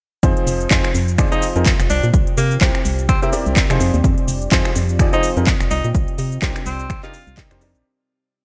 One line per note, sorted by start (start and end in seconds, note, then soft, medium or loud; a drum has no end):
0.23 0.34 F2 loud
0.23 0.67 F3 loud
0.23 0.67 C4 medium
0.23 0.67 D#4 medium
0.23 0.67 F4 medium
0.23 1.90 F4 medium
0.23 0.67 G#4 medium
0.23 0.67 C5 loud
0.23 kick loud
0.23 closed hi-hat medium
0.23 cabasa soft
0.37 closed hi-hat soft
0.47 0.67 F1 loud
0.47 open hi-hat loud
0.47 cabasa medium
0.60 2.67 G5 medium
0.60 closed hi-hat soft
0.60 cabasa soft
0.71 0.82 F2 loud
0.71 0.87 F3 medium
0.71 0.87 C4 medium
0.71 0.87 D#4 medium
0.71 0.87 F4 medium
0.71 0.87 G#4 medium
0.71 0.87 C5 loud
0.71 kick loud
0.71 clap loud
0.71 closed hi-hat medium
0.71 cabasa soft
0.84 finger snap medium
0.84 closed hi-hat soft
0.95 1.28 F2 medium
0.95 2.67 C5 medium
0.95 open hi-hat medium
0.95 cabasa medium
1.08 closed hi-hat soft
1.08 cabasa soft
1.18 1.30 F3 medium
1.18 1.30 C4 medium
1.18 1.30 D#4 medium
1.18 1.30 F4 medium
1.18 1.30 G#4 medium
1.18 1.30 D5 medium
1.18 finger snap medium
1.18 kick loud
1.18 closed hi-hat medium
1.18 cabasa soft
1.32 1.52 F3 medium
1.32 1.52 C4 medium
1.32 1.52 D#4 medium
1.32 1.48 D#4 medium
1.32 1.52 F4 medium
1.32 1.52 G#4 medium
1.32 1.52 C5 medium
1.32 closed hi-hat soft
1.32 cabasa soft
1.42 open hi-hat loud
1.42 cabasa medium
1.56 1.75 F2 medium
1.56 1.70 F3 medium
1.56 1.70 C4 medium
1.56 1.70 D#4 medium
1.56 1.70 F4 medium
1.56 1.70 G#4 medium
1.56 1.70 A#4 medium
1.56 closed hi-hat soft
1.56 cabasa soft
1.66 kick loud
1.66 clap loud
1.66 closed hi-hat medium
1.66 cabasa soft
1.80 1.88 F1 loud
1.80 finger snap medium
1.80 closed hi-hat soft
1.80 cabasa soft
1.90 2.01 C2 loud
1.90 4.57 C4 medium
1.90 2.08 D4 medium
1.90 open hi-hat medium
1.90 cabasa medium
2.03 2.12 A#2 loud
2.03 closed hi-hat soft
2.03 cabasa soft
2.14 2.25 C2 loud
2.14 kick loud
2.14 closed hi-hat medium
2.14 cabasa soft
2.24 4.48 G4 medium
2.24 closed hi-hat soft
2.37 2.58 C3 loud
2.37 2.55 A#3 medium
2.37 open hi-hat loud
2.37 cabasa medium
2.51 closed hi-hat soft
2.51 cabasa soft
2.61 2.72 C2 loud
2.61 2.78 C3 medium
2.61 2.78 C4 medium
2.61 2.78 E4 medium
2.61 2.78 G4 medium
2.61 2.78 A#4 medium
2.61 2.78 C5 medium
2.61 kick loud
2.61 clap loud
2.61 closed hi-hat medium
2.61 cabasa soft
2.75 4.57 D5 medium
2.75 finger snap medium
2.75 closed hi-hat soft
2.85 3.19 C2 loud
2.85 open hi-hat loud
2.85 cabasa medium
2.99 closed hi-hat soft
2.99 cabasa soft
3.09 3.18 C4 medium
3.09 finger snap medium
3.09 kick loud
3.09 closed hi-hat medium
3.09 cabasa soft
3.22 3.30 C3 loud
3.22 3.29 C4 medium
3.22 3.30 C4 medium
3.22 3.30 E4 medium
3.22 3.30 G4 medium
3.22 3.30 A#4 medium
3.22 3.30 E5 loud
3.22 closed hi-hat soft
3.22 cabasa soft
3.33 3.57 C3 medium
3.33 3.57 C4 medium
3.33 3.57 E4 medium
3.33 3.58 G4 medium
3.33 3.57 A#4 medium
3.33 3.57 D5 loud
3.33 open hi-hat loud
3.33 cabasa medium
3.46 3.65 C2 medium
3.46 closed hi-hat soft
3.46 cabasa soft
3.56 kick loud
3.56 clap loud
3.56 closed hi-hat medium
3.56 cabasa soft
3.70 3.78 C3 loud
3.70 3.95 F3 medium
3.70 3.95 C4 medium
3.70 3.95 D#4 medium
3.70 3.95 F4 medium
3.70 3.95 G#4 medium
3.70 3.95 C5 medium
3.70 finger snap medium
3.70 closed hi-hat soft
3.70 cabasa soft
3.80 3.91 F2 loud
3.80 6.58 F4 medium
3.80 open hi-hat loud
3.80 cabasa medium
3.94 4.02 D#2 loud
3.94 closed hi-hat soft
3.94 cabasa soft
4.04 4.15 F2 loud
4.04 kick loud
4.04 closed hi-hat medium
4.04 cabasa soft
4.18 closed hi-hat soft
4.28 4.48 F1 loud
4.28 open hi-hat loud
4.28 cabasa medium
4.42 closed hi-hat soft
4.42 cabasa soft
4.52 4.63 F2 loud
4.52 4.68 F3 medium
4.52 4.68 C4 medium
4.52 4.68 D#4 medium
4.52 4.68 F4 medium
4.52 4.68 G#4 medium
4.52 4.68 C5 loud
4.52 kick loud
4.52 clap loud
4.52 closed hi-hat medium
4.52 cabasa soft
4.56 6.58 C5 medium
4.65 6.58 G5 medium
4.65 finger snap medium
4.65 closed hi-hat soft
4.76 5.09 F2 loud
4.76 open hi-hat loud
4.76 cabasa medium
4.89 closed hi-hat soft
4.89 cabasa soft
4.99 5.11 F3 medium
4.99 5.11 C4 medium
4.99 5.11 D#4 medium
4.99 5.11 F4 medium
4.99 5.11 G#4 medium
4.99 5.11 D5 medium
4.99 finger snap medium
4.99 kick loud
4.99 closed hi-hat medium
4.99 cabasa soft
5.13 5.33 F3 medium
5.13 5.34 C4 medium
5.13 5.33 D#4 medium
5.13 5.29 D#4 loud
5.13 5.33 F4 medium
5.13 5.33 G#4 medium
5.13 5.33 C5 medium
5.13 closed hi-hat soft
5.13 cabasa soft
5.23 open hi-hat loud
5.23 cabasa medium
5.37 5.56 F2 medium
5.37 5.51 F3 medium
5.37 5.51 C4 medium
5.37 5.51 D#4 medium
5.37 5.51 F4 medium
5.37 5.51 G#4 medium
5.37 5.51 A#4 medium
5.37 closed hi-hat soft
5.37 cabasa soft
5.47 kick loud
5.47 clap loud
5.47 closed hi-hat medium
5.47 cabasa soft
5.60 5.69 F1 loud
5.60 finger snap medium
5.60 closed hi-hat soft
5.60 cabasa soft
5.71 5.82 C2 loud
5.71 7.85 C4 medium
5.71 5.89 D#4 medium
5.71 open hi-hat loud
5.71 cabasa medium
5.84 5.93 A#2 loud
5.84 closed hi-hat soft
5.84 cabasa soft
5.95 6.06 C2 loud
5.95 kick loud
5.95 closed hi-hat medium
5.95 cabasa soft
6.08 closed hi-hat soft
6.17 6.38 C3 loud
6.17 7.85 G4 medium
6.17 7.85 D5 medium
6.17 open hi-hat loud
6.17 cabasa medium
6.32 closed hi-hat soft
6.32 cabasa soft
6.42 6.53 C2 loud
6.42 6.59 C3 medium
6.42 6.59 D4 medium
6.42 6.59 D#4 medium
6.42 6.59 G4 medium
6.42 6.59 A#4 medium
6.42 6.59 C5 medium
6.42 kick loud
6.42 clap loud
6.42 closed hi-hat medium
6.42 cabasa soft
6.56 finger snap medium
6.56 closed hi-hat soft
6.56 cabasa soft
6.66 6.99 C2 medium
6.66 7.01 C4 loud
6.66 open hi-hat loud
6.66 cabasa medium
6.80 closed hi-hat soft
6.80 cabasa soft
6.90 finger snap medium
6.90 kick loud
6.90 closed hi-hat medium
6.90 cabasa soft
7.03 7.11 C3 loud
7.03 7.11 D4 medium
7.03 7.11 D#4 medium
7.03 7.37 F4 medium
7.03 7.11 G4 medium
7.03 7.11 A#4 medium
7.03 7.11 D#5 loud
7.03 clap soft
7.03 closed hi-hat soft
7.03 cabasa soft
7.14 open hi-hat loud
7.14 cabasa medium
7.27 7.46 C2 medium
7.27 closed hi-hat soft
7.27 cabasa soft
7.37 7.48 C3 medium
7.37 7.48 D4 medium
7.37 7.48 D#4 medium
7.37 7.48 G4 medium
7.37 7.48 A#4 medium
7.37 7.48 D#5 medium
7.37 kick loud
7.37 clap loud
7.37 closed hi-hat medium
7.37 cabasa soft
7.51 7.76 F2 loud
7.51 7.59 C3 medium
7.51 7.59 D4 medium
7.51 7.59 D#4 medium
7.51 7.59 G4 medium
7.51 7.59 A#4 medium
7.51 7.59 C5 medium
7.51 finger snap medium
7.51 closed hi-hat soft
7.51 cabasa soft
7.61 7.84 C3 medium
7.61 7.84 D4 medium
7.61 7.84 D#4 medium
7.61 7.84 G4 medium
7.61 7.84 A#4 medium
7.61 7.84 D5 medium
7.61 open hi-hat loud
7.61 cabasa medium
7.75 7.83 A#1 medium
7.75 closed hi-hat soft
7.75 cabasa soft